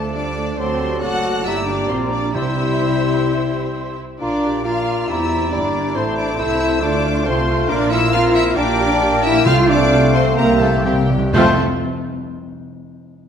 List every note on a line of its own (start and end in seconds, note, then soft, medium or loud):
0.00 0.56 D2 medium
0.00 0.55 F3 medium
0.00 0.15 A3 medium
0.00 0.58 D4 medium
0.00 0.15 A4 medium
0.00 0.55 A4 soft
0.00 0.55 D5 medium
0.00 0.14 A5 medium
0.00 0.56 A5 medium
0.14 0.38 G3 medium
0.14 0.58 D4 medium
0.14 0.59 D4 medium
0.14 0.59 D5 medium
0.14 0.57 D6 medium
0.37 0.58 A3 medium
0.58 1.01 D2 medium
0.58 0.99 F#3 medium
0.58 0.80 A3 medium
0.58 1.01 C4 medium
0.58 1.02 C4 medium
0.58 1.46 F#4 medium
0.58 0.99 A4 medium
0.58 1.02 C5 medium
0.58 0.99 D5 medium
0.58 1.00 A5 medium
0.58 1.01 C6 medium
0.81 1.02 G3 medium
1.01 1.44 F#1 medium
1.01 1.45 F#3 medium
1.01 1.45 A3 medium
1.01 1.45 F#4 medium
1.01 1.44 F#4 medium
1.01 1.44 A4 medium
1.01 1.43 D5 medium
1.01 1.44 F#5 medium
1.01 1.45 A5 medium
1.01 1.44 F#6 loud
1.43 1.89 G1 medium
1.43 2.34 G3 medium
1.43 2.35 A#3 medium
1.43 1.67 E4 medium
1.43 1.89 G4 medium
1.43 2.34 G4 medium
1.43 2.36 D5 medium
1.43 1.53 E5 loud
1.43 2.36 A#5 medium
1.43 1.67 E6 loud
1.66 1.89 D4 medium
1.66 1.88 D5 medium
1.66 1.90 D6 loud
1.88 2.34 A#1 medium
1.88 2.12 C4 medium
1.88 2.35 F4 medium
1.88 2.12 C5 medium
1.88 1.96 C6 medium
2.10 2.21 D4 medium
2.10 2.35 D4 medium
2.10 2.34 D5 medium
2.10 2.34 D6 medium
2.34 4.01 C2 medium
2.34 3.01 C3 medium
2.34 3.94 G3 medium
2.34 3.97 C4 medium
2.34 3.94 E4 medium
2.34 3.98 E4 medium
2.34 3.97 E4 medium
2.34 3.95 G4 medium
2.34 3.98 C5 medium
2.34 3.95 E5 medium
2.34 3.98 C6 medium
2.34 3.94 E6 medium
4.20 5.05 A#1 medium
4.20 4.62 A#3 medium
4.20 4.62 D4 medium
4.20 4.62 F4 medium
4.20 4.42 F4 medium
4.20 4.62 D5 medium
4.20 4.63 D5 medium
4.20 4.62 A#5 medium
4.20 4.62 D6 medium
4.44 4.66 G4 medium
4.64 5.10 A#3 medium
4.64 5.09 D4 medium
4.64 5.08 F4 medium
4.64 5.09 F4 medium
4.64 5.09 D5 medium
4.64 5.08 F5 medium
4.64 5.08 A#5 medium
4.64 5.09 F6 medium
5.07 5.51 E2 medium
5.07 5.52 G3 medium
5.07 5.53 C4 medium
5.07 5.52 E4 medium
5.07 5.53 E4 medium
5.07 5.31 G4 medium
5.07 5.52 D5 medium
5.07 5.52 E5 medium
5.07 5.52 A#5 medium
5.07 5.52 E6 loud
5.32 6.37 E4 medium
5.51 5.96 G1 medium
5.51 5.97 G3 medium
5.51 5.97 A#3 medium
5.51 5.95 D4 medium
5.51 5.96 D4 medium
5.51 5.95 E4 medium
5.51 5.96 D5 medium
5.51 5.97 D5 medium
5.51 5.99 A#5 medium
5.51 5.94 D6 medium
5.95 6.39 A1 medium
5.95 6.39 A3 medium
5.95 6.17 C4 medium
5.95 6.05 C4 medium
5.95 6.82 C4 medium
5.95 6.38 E4 medium
5.95 6.38 C5 medium
5.95 6.04 C5 medium
5.95 6.38 A5 medium
5.95 6.17 C6 loud
6.16 6.38 D4 medium
6.16 6.27 D4 medium
6.16 6.38 D5 medium
6.16 6.38 D6 loud
6.37 6.82 C2 medium
6.37 6.81 A3 medium
6.37 6.81 E4 loud
6.37 6.81 E4 medium
6.37 6.83 E4 medium
6.37 6.81 E4 medium
6.37 6.80 C5 medium
6.37 6.82 E5 medium
6.37 6.81 A5 medium
6.37 6.82 E6 loud
6.80 7.26 D2 medium
6.80 7.25 A3 medium
6.80 7.03 A3 medium
6.80 7.24 D4 medium
6.80 7.25 D4 loud
6.80 7.25 F4 medium
6.80 8.57 F4 medium
6.80 7.24 C5 medium
6.80 7.25 D5 medium
6.80 7.24 A5 medium
6.80 7.26 D6 loud
7.04 7.68 A3 medium
7.24 7.70 C2 medium
7.24 7.71 A3 medium
7.24 7.69 C4 medium
7.24 7.69 F4 medium
7.24 7.71 C5 medium
7.24 7.70 C5 loud
7.24 7.69 A5 medium
7.24 7.70 C6 loud
7.67 8.55 A#1 medium
7.67 8.13 A#3 medium
7.67 7.90 D4 loud
7.67 7.91 D4 loud
7.67 8.12 F4 medium
7.67 8.13 A#4 medium
7.67 7.91 D5 loud
7.67 8.12 F5 medium
7.67 7.77 D6 loud
7.91 7.99 E4 loud
7.91 8.13 E4 loud
7.91 8.13 E5 loud
7.91 8.13 E6 loud
8.12 8.56 A#3 medium
8.12 8.57 C4 medium
8.12 8.34 F4 loud
8.12 8.59 F4 medium
8.12 8.35 F4 loud
8.12 8.57 A#4 medium
8.12 8.20 F5 loud
8.12 8.57 F5 medium
8.12 8.35 F6 loud
8.34 8.57 E4 loud
8.34 8.58 E4 loud
8.34 8.56 E5 loud
8.34 8.42 E6 loud
8.56 9.45 A#1 loud
8.56 9.00 A#3 medium
8.56 9.45 A#3 medium
8.56 9.23 D4 loud
8.56 9.46 D4 medium
8.56 9.25 D4 loud
8.56 8.77 G4 loud
8.56 9.45 A#4 loud
8.56 9.22 D5 loud
8.56 9.45 G5 loud
8.56 9.23 D6 loud
8.78 8.86 G4 medium
9.01 9.46 A#3 medium
9.01 9.45 G4 medium
9.23 9.46 E4 loud
9.23 9.46 E5 loud
9.23 9.46 E6 loud
9.46 10.36 C2 medium
9.46 10.10 C3 loud
9.46 9.90 A3 loud
9.46 10.39 A3 medium
9.46 10.36 C4 medium
9.46 9.68 F4 loud
9.46 9.90 F4 medium
9.46 9.69 F4 loud
9.46 10.19 C5 medium
9.46 10.40 F5 loud
9.46 9.54 F5 loud
9.46 9.69 F6 loud
9.68 10.14 D4 loud
9.68 10.13 D5 loud
9.68 10.13 D6 loud
9.91 10.37 A3 medium
9.91 9.99 F4 medium
10.14 10.37 C4 medium
10.14 10.22 A4 medium
10.14 10.37 C5 loud
10.14 10.38 C6 loud
10.36 11.11 C2 loud
10.36 10.44 C3 soft
10.36 10.85 A#3 medium
10.36 10.61 A#3 loud
10.36 10.85 A#3 medium
10.36 10.84 C4 medium
10.36 10.83 G4 medium
10.36 10.46 A#4 loud
10.36 10.84 C5 medium
10.36 10.85 E5 medium
10.36 10.61 A#5 loud
10.45 10.52 C3 soft
10.53 10.59 C3 medium
10.60 10.68 C3 medium
10.60 10.85 A3 medium
10.60 10.70 A3 medium
10.60 10.85 A4 loud
10.60 10.85 A5 loud
10.69 10.75 C3 medium
10.76 10.84 C3 medium
10.84 10.92 C3 medium
10.84 11.34 G3 medium
10.84 11.10 A#3 medium
10.84 10.93 C4 medium
10.84 11.10 C4 medium
10.84 10.93 G4 medium
10.84 11.33 G4 medium
10.84 10.97 C5 medium
10.84 10.92 E5 medium
10.84 11.34 G5 loud
10.93 11.01 C3 medium
11.02 11.09 C3 medium
11.10 11.17 C3 loud
11.18 11.26 C3 loud
11.33 11.55 F2 loud
11.33 11.60 F2 loud
11.33 11.60 A3 loud
11.33 11.54 A3 medium
11.33 11.54 A3 loud
11.33 11.61 C4 loud
11.33 11.55 C4 loud
11.33 11.61 F4 loud
11.33 11.61 A4 loud
11.33 11.54 C5 loud
11.33 11.60 A5 loud
11.33 11.60 C6 loud